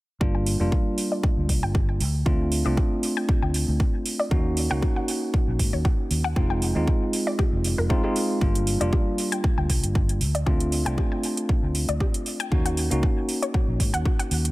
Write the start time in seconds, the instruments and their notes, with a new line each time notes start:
0.20 fingered electric bass G1, tine electric piano G3 A#3 D4 F4, synth arpeggio sound G4, kick
0.35 synth arpeggio sound G5
0.46 open hi-hat
0.60 fingered electric bass F1, tine electric piano G3 A#3 D4 F4
0.72 kick
0.98 open hi-hat
1.12 synth arpeggio sound D5
1.23 synth arpeggio sound G4, kick
1.37 fingered electric bass D2
1.49 fingered electric bass C2, kick, open hi-hat
1.63 fingered electric bass G1, synth arpeggio sound G5
1.75 synth arpeggio sound G4, kick
1.89 synth arpeggio sound G5
2.00 fingered electric bass D2, open hi-hat
2.26 tine electric piano A3 C4 D4 F4, kick
2.52 open hi-hat
2.65 fingered electric bass C2, tine electric piano A3 C4 D4 F4, synth arpeggio sound D5
2.77 synth arpeggio sound G4, kick
3.03 open hi-hat
3.17 synth arpeggio sound G5
3.29 synth arpeggio sound G4, kick
3.42 fingered electric bass D2, synth arpeggio sound G5
3.54 open hi-hat
3.68 fingered electric bass D2
3.80 kick
4.06 open hi-hat
4.19 synth arpeggio sound D5
4.31 fingered electric bass D#2, tine electric piano A#3 C#4 D#4 F#4, synth arpeggio sound F#4, kick
4.57 open hi-hat
4.70 fingered electric bass C#2, tine electric piano A#3 C#4 D#4 F#4, synth arpeggio sound F#5
4.82 synth arpeggio sound F#4, kick
4.96 synth arpeggio sound F#5
5.08 open hi-hat
5.34 kick
5.48 fingered electric bass A#1
5.59 fingered electric bass G#2, kick, open hi-hat
5.73 fingered electric bass D#2, synth arpeggio sound C#5
5.85 synth arpeggio sound F#4, kick
6.11 fingered electric bass D#2, open hi-hat
6.24 synth arpeggio sound F#5
6.36 fingered electric bass F1, tine electric piano G#3 C4 D#4 F4, synth arpeggio sound G4, kick
6.50 synth arpeggio sound G5
6.62 open hi-hat
6.75 fingered electric bass D#2, tine electric piano G#3 C4 D#4 F4
6.88 kick
7.13 open hi-hat
7.27 synth arpeggio sound D5
7.39 synth arpeggio sound G4, kick
7.53 fingered electric bass F1
7.64 open hi-hat
7.78 fingered electric bass F1, synth arpeggio sound A#4
7.90 tine electric piano G#3 C4 D#4 F4, synth arpeggio sound C5, kick
8.04 tine electric piano G#3 C4 D#4 F4, synth arpeggio sound G4
8.16 open hi-hat
8.41 fingered electric bass G1, tine electric piano G3 A#3 D4 F4, kick
8.55 closed hi-hat
8.67 open hi-hat
8.80 fingered electric bass F1, tine electric piano G3 A#3 D4 F4, synth arpeggio sound D5, closed hi-hat
8.93 synth arpeggio sound G4, kick
9.18 open hi-hat
9.32 synth arpeggio sound G5, closed hi-hat
9.44 synth arpeggio sound G4, kick
9.58 fingered electric bass D2, synth arpeggio sound G5
9.70 fingered electric bass C2, kick, open hi-hat
9.84 fingered electric bass G1, closed hi-hat
9.95 kick
10.09 closed hi-hat
10.21 fingered electric bass D2, open hi-hat
10.35 synth arpeggio sound D5, closed hi-hat
10.46 fingered electric bass D2, tine electric piano A3 C4 D4 F4, synth arpeggio sound G4, kick
10.60 closed hi-hat
10.72 open hi-hat
10.85 fingered electric bass C2, tine electric piano A3 C4 D4 F4, synth arpeggio sound G5, closed hi-hat
10.98 synth arpeggio sound G4, kick
11.12 synth arpeggio sound G5
11.23 open hi-hat
11.37 closed hi-hat
11.49 kick
11.63 fingered electric bass D2
11.75 open hi-hat
11.89 fingered electric bass D2, synth arpeggio sound D5, closed hi-hat
12.00 synth arpeggio sound G4, kick
12.14 closed hi-hat
12.26 open hi-hat
12.40 synth arpeggio sound G5, closed hi-hat
12.51 fingered electric bass D#2, tine electric piano A#3 C#4 D#4 F#4, synth arpeggio sound F#4, kick
12.66 synth arpeggio sound F#5, closed hi-hat
12.77 open hi-hat
12.90 fingered electric bass C#2, tine electric piano A#3 C#4 D#4 F#4, closed hi-hat
13.03 kick
13.29 open hi-hat
13.42 synth arpeggio sound C#5, closed hi-hat
13.54 synth arpeggio sound F#4, kick
13.68 fingered electric bass A#1
13.80 fingered electric bass G#2, kick, open hi-hat
13.94 fingered electric bass D#2, synth arpeggio sound F#5, closed hi-hat
14.05 synth arpeggio sound F#4, kick
14.19 synth arpeggio sound F#5, closed hi-hat
14.31 fingered electric bass D#2, open hi-hat
14.45 closed hi-hat